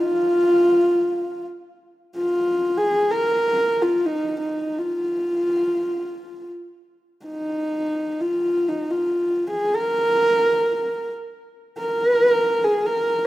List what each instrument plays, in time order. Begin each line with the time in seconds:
0.00 horsehead fiddle F4
0.05 xiao F5
2.17 horsehead fiddle F4
2.77 horsehead fiddle G#4
3.11 horsehead fiddle A#4
3.82 horsehead fiddle F4
4.06 horsehead fiddle D#4
4.41 horsehead fiddle D#4
4.78 horsehead fiddle F4
7.26 horsehead fiddle D#4
8.20 horsehead fiddle F4
8.69 horsehead fiddle D#4
8.91 horsehead fiddle F4
9.51 horsehead fiddle G#4
9.75 horsehead fiddle A#4
11.78 horsehead fiddle A#4
12.64 horsehead fiddle G#4
12.86 horsehead fiddle A#4